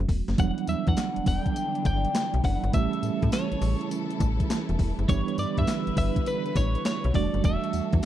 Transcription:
0.09 fm bass E1, kick, open hi-hat
0.28 fm bass F#1, snare, closed hi-hat
0.38 fm bass E1, string section D3 E3 D4 E4, tine electric piano E3 F#3 G3 B3 D4, clean electric guitar F#5, kick, closed hi-hat, tambourine
0.58 closed hi-hat
0.67 fm bass E2, clean electric guitar E5, closed hi-hat, tambourine
0.87 fm bass E2, clean electric guitar F#5, kick, closed hi-hat
0.97 snare, clap, closed hi-hat, tambourine
1.16 fm bass E1, closed hi-hat
1.26 fm bass E1, clean electric guitar F#5, kick, open hi-hat, tambourine
1.39 clean electric guitar G5
1.46 kick, closed hi-hat
1.56 closed hi-hat, tambourine
1.75 closed hi-hat
1.85 fm bass G1, clean electric guitar G5, kick, closed hi-hat, tambourine
2.05 closed hi-hat
2.15 snare, clap, closed hi-hat, tambourine
2.34 fm bass B1, closed hi-hat
2.44 fm bass F#1, clean electric guitar F#5, kick, open hi-hat
2.64 fm bass G1, closed hi-hat
2.73 fm bass A1, string section C#3 A4, tine electric piano E3 G3 A3 C#4 G4, clean electric guitar E5, kick, closed hi-hat, tambourine
2.93 closed hi-hat
3.03 fm bass A2, closed hi-hat, tambourine
3.22 fm bass A2, kick, closed hi-hat
3.32 clean electric guitar C#5, snare, clap, closed hi-hat, tambourine
3.52 fm bass A1, closed hi-hat
3.62 fm bass A1, open hi-hat, tambourine
3.81 closed hi-hat
3.91 closed hi-hat, tambourine
4.10 closed hi-hat
4.20 fm bass A1, kick, closed hi-hat, tambourine
4.40 kick, closed hi-hat
4.50 snare, clap, closed hi-hat, tambourine
4.69 fm bass E1, closed hi-hat
4.79 fm bass E1, kick, open hi-hat
4.99 fm bass F#1, closed hi-hat
5.08 fm bass G1, string section D3 B4, tine electric piano E3 G3 B3 D4 G4, clean electric guitar C#5, kick, closed hi-hat, tambourine
5.28 closed hi-hat
5.38 fm bass G2, clean electric guitar D5, closed hi-hat, tambourine
5.57 fm bass G2, clean electric guitar E5, kick, closed hi-hat
5.67 snare, clap, closed hi-hat, tambourine
5.87 fm bass G1, closed hi-hat
5.97 fm bass G1, clean electric guitar E5, kick, open hi-hat, tambourine
6.16 kick, closed hi-hat
6.26 clean electric guitar B4, closed hi-hat, tambourine
6.46 closed hi-hat
6.56 fm bass A1, clean electric guitar C#5, kick, closed hi-hat, tambourine
6.75 closed hi-hat
6.85 clean electric guitar C#5, snare, clap, closed hi-hat, tambourine
7.04 fm bass B1, closed hi-hat
7.14 fm bass E1, tine electric piano E3 G3 A3 D4 F#4, string section G3 F#4 A4, clean electric guitar D5, kick, open hi-hat
7.34 fm bass F#1, closed hi-hat
7.44 fm bass E1, clean electric guitar E5, kick, closed hi-hat, tambourine
7.64 closed hi-hat
7.73 fm bass E2, closed hi-hat, tambourine
7.93 fm bass E2, kick, closed hi-hat

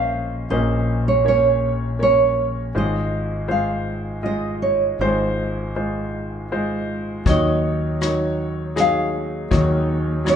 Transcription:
Already playing: fretless electric bass A#1, grand piano A#1 A#2 A#3 C#4 C5 D#5, nylon-string guitar F5
0.50 grand piano A#1 A#2 A#3 C#4 C5, fretless electric bass A#1, nylon-string guitar D#5
1.08 nylon-string guitar C#5
1.25 grand piano A#3 C#4 C#5, nylon-string guitar C#5
1.99 grand piano A#3 C#4 C#5, nylon-string guitar C#5
2.75 grand piano G#1 G#2 G#3 F4 C5, fretless electric bass G#1, nylon-string guitar D#5
3.48 grand piano G#3 F4 C5, nylon-string guitar F5
4.23 grand piano G#3 F4 D#5, nylon-string guitar D#5
4.62 nylon-string guitar C#5
4.99 fretless electric bass G#1, grand piano G#1 G#2 G#3 F4 C5, nylon-string guitar C5
5.76 grand piano G#3 F4 C5
6.52 grand piano G#3 F4 C5
7.25 fretless electric bass D#2, grand piano D#2 D#3 F#3 D#4 C#5, nylon-string guitar D#5, kick, closed hi-hat
8.01 grand piano F#3 D#4 C#5, cross-stick, closed hi-hat
8.76 grand piano F#3 D#4 G#4, cross-stick, closed hi-hat
8.80 nylon-string guitar F5
9.51 grand piano D#2 D#3 F#3 D#4 C#5, fretless electric bass D#2, kick, closed hi-hat
10.25 grand piano F#3 D#4 C#5, cross-stick, closed hi-hat
10.29 nylon-string guitar D#5

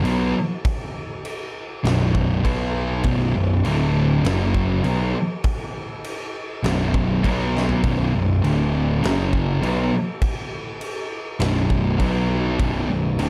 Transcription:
0.03 picked electric bass B1, distorted electric guitar B2 F#3 B3, crash
0.65 kick, crash
1.25 crash
1.83 picked electric bass B0, distorted electric guitar B1 F#2 B2, snare, crash
2.15 kick
2.44 picked electric bass B1, distorted electric guitar B2 F#3 B3, kick, crash
3.04 picked electric bass B0, distorted electric guitar B1 F#2 B2, kick, crash
3.35 picked electric bass B0, distorted electric guitar B1 F#2
3.64 picked electric bass D1, distorted electric guitar D2 A2 D3, crash
4.24 picked electric bass F#1, distorted electric guitar F#2 C#3 F#3, snare, crash
4.54 kick
4.83 picked electric bass B1, distorted electric guitar B2 F#3 B3, crash
5.44 kick, crash
6.04 crash
6.63 picked electric bass B0, distorted electric guitar B1 F#2 B2, snare, crash
6.94 kick
7.23 picked electric bass B1, distorted electric guitar B2 F#3 B3, kick, crash
7.57 snare
7.69 floor tom
7.83 picked electric bass B0, distorted electric guitar B1 F#2 B2, kick, crash
8.13 picked electric bass B0, distorted electric guitar B1 F#2
8.42 picked electric bass D1, distorted electric guitar D2 A2 D3, crash
9.02 picked electric bass F#1, distorted electric guitar F#2 C#3 F#3, snare, crash
9.33 kick
9.61 picked electric bass B1, distorted electric guitar B2 F#3 B3, crash
10.22 kick, crash
10.81 crash
11.40 picked electric bass B0, distorted electric guitar B1 F#2 B2, snare, crash
11.70 kick
11.99 picked electric bass B1, distorted electric guitar B2 F#3 B3, kick, crash
12.59 picked electric bass B0, distorted electric guitar B1 F#2 B2, kick, crash
12.90 picked electric bass B0, distorted electric guitar B1 F#2
13.19 picked electric bass D1, distorted electric guitar D2 A2 D3, crash

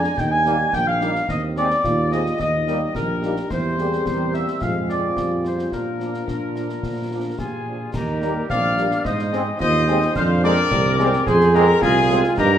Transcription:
Already playing: euphonium D4, woodwind section G#5
0.04 snare
0.18 tuba D#2, euphonium D#4, woodwind section G5, concert bass drum, snare
0.31 woodwind section G#5
0.46 french horn section G3 A#3 D#4, trombone section G3 A#3, trumpet section A#4, snare
0.73 tuba A#1, euphonium A#3, woodwind section G5, concert bass drum, snare
0.87 woodwind section F5
1.01 french horn section G3 A#3 D#4, trombone section G3 A#3, trumpet section A#4, snare
1.15 snare
1.29 tuba D#2, euphonium C4, woodwind section D#5, concert bass drum, snare
1.56 french horn section G#3 C4 D#4, trombone section G#3 C4, trumpet section G#4, woodwind section D5, snare
1.70 snare
1.84 tuba D#2, euphonium F4, concert bass drum, snare
2.12 trombone section G#3 C4, french horn section G#3 C4 D#4, trumpet section G#4, woodwind section D#5, snare
2.26 snare
2.39 tuba D#2, euphonium D#4, woodwind section D#5, concert bass drum, snare
2.67 french horn section G3 A#3 D#4, trombone section G3 A#3, trumpet section A#4, snare
2.95 tuba A#1, euphonium G4, woodwind section A#4, concert bass drum, snare
3.23 trombone section G3 A#3, french horn section G3 A#3 D#4, trumpet section A#4, snare
3.36 snare
3.50 tuba E2, french horn section G3 C4 G4, euphonium E4, trumpet section A#4, woodwind section C5, concert bass drum, snare, crash
3.78 trombone section G3 A#3, euphonium G#4, snare
3.92 snare
4.06 tuba E2, euphonium G4, concert bass drum, snare
4.34 trombone section G3 A#3, woodwind section E5, snare
4.48 snare
4.61 tuba F2, french horn section G#3 C4 F4, euphonium F4, trumpet section G#4, woodwind section F5, concert bass drum, snare
4.89 trombone section G#3 C4, woodwind section D5, snare
5.17 tuba F2, french horn section G3, concert bass drum, snare
5.45 trombone section G#3 C4, woodwind section C5, snare
5.59 snare
5.72 tuba A#2, french horn section F3 D4 F4, euphonium D4, woodwind section A#4, trumpet section A#4, concert bass drum, snare
6.00 trombone section F3 D4, snare
6.14 snare
6.28 tuba A#2, euphonium D4, concert bass drum, snare
6.56 trombone section F3 D4, snare
6.69 snare
6.83 tuba A#2, concert bass drum, snare
7.11 trombone section F3 D4, euphonium F4
7.38 tuba A#2, woodwind section F4, euphonium G4, trumpet section G#4, piccolo G#5, concert bass drum, snare
7.68 trombone section F3 D4
7.93 tuba D#2, euphonium D#4, woodwind section G4, trumpet section A#4, piccolo A#5, concert bass drum, snare, crash
8.22 french horn section G3 A#3 A#4, trombone section G3 A#3, snare
8.49 tuba A#1, euphonium C4, woodwind section D5, trumpet section F5, piccolo F6, concert bass drum, snare
8.77 trombone section G3 A#3, french horn section G3 A#3 A#4, euphonium D4, snare
8.91 snare
9.05 tuba G#2, euphonium D#4, woodwind section C5, trumpet section D#5, piccolo D#6, concert bass drum, snare
9.19 snare
9.33 trombone section G#3 C4, french horn section G#3 C4 G#4, snare
9.60 tuba D#2, euphonium F4, woodwind section C5, trumpet section D#5, piccolo D#6, concert bass drum, snare
9.88 trombone section G#3 C4, french horn section G#3 C4 G#4, euphonium D#4, snare
10.02 snare
10.15 tuba F2, euphonium D4, woodwind section C5, trumpet section F5, piccolo F6, concert bass drum, snare, crash
10.43 trombone section G#3 C4, french horn section G#3 C4 G#4, woodwind section A#4, trumpet section D5, piccolo D6, snare
10.71 tuba C2, euphonium C4, concert bass drum, snare
10.99 trombone section G#3 C4, french horn section G#3 C4 G#4, snare
11.13 snare
11.27 tuba F2, woodwind section G#4, euphonium G#4, trumpet section C5, piccolo C6, concert bass drum, snare
11.41 snare
11.54 french horn section G#3 C4 G#4, trombone section G#3 C4, woodwind section G4, trumpet section A#4, piccolo A#5, snare
11.81 tuba C2, euphonium F4, woodwind section F4, trumpet section G#4, piccolo G#5, concert bass drum, snare
12.10 trombone section G#3 C4, french horn section G#3 C4 G#4, snare
12.24 snare
12.38 tuba G2, euphonium D#4, woodwind section G4, trumpet section A#4, piccolo A#5, concert bass drum, snare, crash

